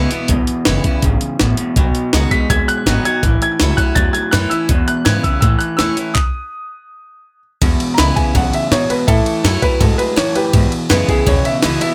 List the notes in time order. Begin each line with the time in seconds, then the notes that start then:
Already playing: C#2 B2 E3 G#3 B3
0.11 E2 B2 B3 E4, muted upright bass stroke, closed hi-hat
0.28 B1 E2 B2, kick, closed hi-hat
0.47 muted upright bass stroke, closed hi-hat
0.65 F#1 E2 C#3 E3 G#3 B3 E4, snare, closed hi-hat
0.84 E2 C#3 B3 E4, muted upright bass stroke, kick, closed hi-hat
1.02 G#1 E2 G#2 C#3, kick, closed hi-hat
1.21 closed hi-hat
1.40 A1 E2 A2 B2, snare, closed hi-hat
1.57 E2 B2, muted upright bass stroke, closed hi-hat
1.76 B1 B2 F#3, kick, closed hi-hat
1.95 muted upright bass stroke, closed hi-hat
2.13 C#2 B2 F#3 G#3 B3 D#4 F#4, snare, closed hi-hat
2.31 B2 G#3 D#4 F#4 B6, kick, closed hi-hat
2.50 D#2 F#2 B2 G#3 G#6, kick, closed hi-hat
2.67 F#6, muted upright bass stroke, closed hi-hat
2.86 G#1 B2 F#3 B3 D#4 F#4, snare, closed hi-hat
3.05 B2 F#3 D#4 F#4 G#6, muted upright bass stroke, closed hi-hat
3.23 A1 A2 E3, kick, closed hi-hat
3.42 G#6, closed hi-hat
3.59 C#2 A2 E3 F#3 A3 C#4 E4, snare, closed hi-hat
3.77 A2 F#3 E4 F#6, kick, closed hi-hat
3.81 C#4
3.95 E2 A2 F#3 A6, kick, closed hi-hat
4.13 G#6, muted upright bass stroke, closed hi-hat
4.31 F#2 A2 E3 A3 C#4 E4 F#6, snare, closed hi-hat
4.50 A2 E3 C#4 E4 E6, muted upright bass stroke, closed hi-hat
4.69 E2 B2, kick, closed hi-hat
4.88 F#6, muted upright bass stroke, closed hi-hat
5.05 E2 G#2 C#3 E3 G#3 B3 E4 G#6, snare, closed hi-hat
5.23 E2 C#3 B3 E4 E6, muted upright bass stroke, kick, closed hi-hat
5.40 A2 E3 E6, kick, closed hi-hat
5.59 F#6, muted upright bass stroke, closed hi-hat
5.77 E2 A2 E3 A3 C#4 E6, snare, closed hi-hat
5.81 E4
5.97 A2 E3 C#4 E4, muted upright bass stroke, closed hi-hat
6.14 D#6, kick, clap
7.61 E2 B2, kick, ride
7.80 muted upright bass stroke, ride
7.94 E3 A#5
7.98 C#2 E2 C#3 G#3 B3 E4 B5, snare, ride
8.16 E2 C#3 B3 E4 G#5, kick, ride
8.35 B1 E2 F#2 C#3 F#5, kick, ride
8.53 E5, muted upright bass stroke, ride
8.71 E2 G#2 B2 C#5, snare, ride
8.89 E2 B2 B4, muted upright bass stroke, ride
9.07 A2 E3 E4 A4, kick, ride
9.26 muted upright bass stroke, ride
9.43 F#2 A2 E3 F#3 A3 C#4 E4, snare, ride
9.62 A2 F#3 C#4 E4 B4, muted upright bass stroke, kick, ride
9.80 G#2 A2 F#3 G#3 A4, kick, ride
9.98 B4, muted upright bass stroke, ride
10.16 F#2 A2 E3 C#5, snare, ride
10.35 A2 E3 G4 B4, muted upright bass stroke, ride
10.53 E2 G#2 B2, kick, ride
10.72 muted upright bass stroke, ride
10.89 E2 F#2 C#3 E3 G#3 B3 E4 B4, snare, ride
11.08 E2 C#3 B3 E4 G#4, muted upright bass stroke, kick, ride
11.26 E2 B2 C#3 C#5, kick, ride
11.45 E5, muted upright bass stroke, ride
11.62 C#2 E2 B2 E3 G#3 B3 E4, snare, ride
11.81 E2 B2 B3 E4 E5, muted upright bass stroke, ride